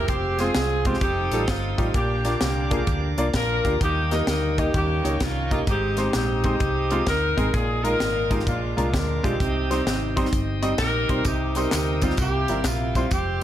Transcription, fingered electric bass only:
0.09 0.48 F1 medium
0.55 0.95 C2 medium
1.02 1.27 F1 loud
1.31 1.45 A1 medium
1.48 1.74 G1 medium
1.79 1.92 A1 medium
1.94 2.34 A#1 loud
2.41 2.81 C2 medium
2.87 3.13 D2 medium
3.17 3.31 C2 medium
3.34 3.60 A#1 medium
3.65 3.78 D2 medium
3.81 4.21 D#2 medium
4.27 4.67 D2 medium
4.74 5.00 D#2 medium
5.04 5.18 C#2 medium
5.21 5.60 C2 medium
5.68 6.07 G#1 medium
6.14 6.54 A#1 medium
6.61 7.00 C2 medium
7.07 7.33 D2 medium
7.38 7.51 A1 medium
7.54 7.93 A#1 loud
8.00 8.47 G#1 medium
8.47 8.72 A#1 loud
8.78 8.91 C2 medium
8.93 9.19 D2 medium
9.24 9.38 B1 medium
9.40 9.80 C2 medium
9.86 10.26 G#1 medium
10.32 10.72 G1 medium
10.79 11.05 A#1 medium
11.09 11.23 B1 medium
11.25 11.65 C2 loud
11.73 12.12 D2 medium
12.18 12.44 C2 loud
12.49 12.63 G#1 medium
12.65 13.04 A#1 medium
13.12 13.43 F1 medium

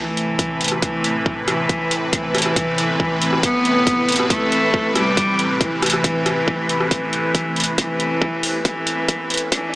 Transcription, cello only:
0.00 0.74 E3 loud
0.82 1.39 E3 medium
1.48 2.04 E3 loud
2.13 3.35 E3 loud
3.43 4.22 B3 loud
4.30 4.87 A3 medium
4.95 5.52 G3 loud
5.61 6.83 E3 loud
6.91 7.70 E3 medium
7.78 8.57 E3 loud
8.65 9.43 E3 loud
9.52 9.75 E3 loud

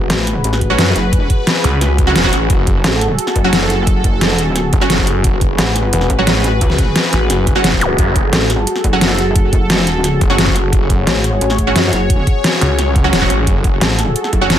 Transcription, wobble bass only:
0.10 0.43 A1 loud
0.44 0.77 A1 loud
0.78 0.94 F#2 loud
0.96 1.29 F#1 loud
2.84 3.17 A1 medium
3.36 4.34 F#1 loud
4.34 4.56 E1 loud
4.56 4.71 D1 loud
5.59 5.91 A1 loud
6.10 6.60 A1 loud
6.61 6.94 C#2 loud
8.33 8.66 A1 loud
8.84 9.82 F#1 loud
9.82 10.04 E1 loud
10.04 10.20 D1 loud
11.07 11.40 A1 loud
11.41 11.74 A1 medium
11.76 11.91 F#2 loud
11.93 12.26 F#1 loud
13.81 14.14 A1 medium
14.33 14.59 F#1 loud

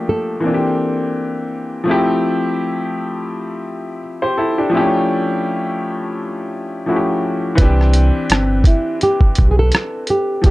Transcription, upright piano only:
0.00 0.39 F3 medium
0.00 0.40 A3 medium
0.00 0.41 A#3 medium
0.00 0.42 D4 medium
0.00 0.46 G4 medium
0.40 1.82 E3 medium
0.40 1.83 A#3 medium
0.40 1.84 C4 soft
0.46 1.85 D4 soft
0.46 0.53 F4 medium
0.54 1.89 G4 medium
1.84 4.67 F3 medium
1.84 4.68 A3 medium
1.84 4.69 C4 medium
1.89 3.98 E4 medium
1.89 3.99 G4 medium
4.22 4.37 G4 soft
4.22 4.36 C5 medium
4.38 4.57 E4 medium
4.38 4.57 A4 medium
4.58 4.92 D4 medium
4.58 4.75 G4 medium
4.70 6.81 F3 medium
4.70 6.82 A3 medium
4.70 4.80 C4 medium
4.75 6.84 E4 medium
4.75 6.85 G4 medium
4.80 6.86 C#4 medium
6.86 7.58 F3 medium
6.86 7.58 A3 soft
6.86 7.59 C#4 soft
6.86 7.59 E4 soft
6.86 6.96 F#4 soft
6.96 7.61 G4 medium
7.55 10.38 E3 medium
7.55 10.40 C4 medium
7.55 10.39 B4 medium
7.61 10.41 D4 medium
7.61 10.42 G4 medium
10.42 10.51 F3 medium
10.42 10.51 A3 medium
10.42 10.51 A#3 medium
10.47 10.51 D4 medium

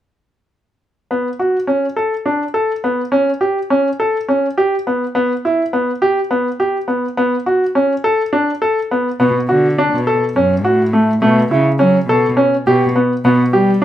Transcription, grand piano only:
1.11 1.27 B3 soft
1.39 1.56 F#4 soft
1.67 1.84 C#4 soft
1.96 2.13 A4 soft
2.26 2.42 D4 soft
2.54 2.71 A4 medium
2.84 3.01 B3 soft
3.12 3.29 C#4 medium
3.41 3.58 G4 soft
3.70 3.87 C#4 soft
4.00 4.16 A4 medium
4.29 4.45 C#4 soft
4.58 4.74 G4 medium
4.87 5.03 B3 soft
5.15 5.32 B3 medium
5.45 5.61 E4 medium
5.73 5.90 B3 soft
6.02 6.19 G4 medium
6.31 6.47 B3 medium
6.60 6.76 G4 medium
6.88 7.05 B3 medium
7.17 7.34 B3 medium
7.46 7.63 F#4 soft
7.75 7.92 C#4 medium
8.04 8.21 A4 medium
8.33 8.49 D4 medium
8.62 8.78 A4 medium
8.91 9.08 B3 medium
9.20 9.36 B3 medium
9.49 9.65 F#4 medium
9.78 9.95 D4 medium
10.07 10.23 A4 medium
10.36 10.53 C#4 medium
10.65 10.81 F#4 medium
10.93 11.10 A3 soft
11.22 11.38 A3 medium
11.51 11.68 E4 soft
11.79 11.96 C#4 medium
12.09 12.26 A4 medium
12.37 12.53 C#4 medium
12.67 12.83 G4 medium
12.96 13.12 B3 medium
13.25 13.41 B3 medium
13.53 13.70 G4 medium

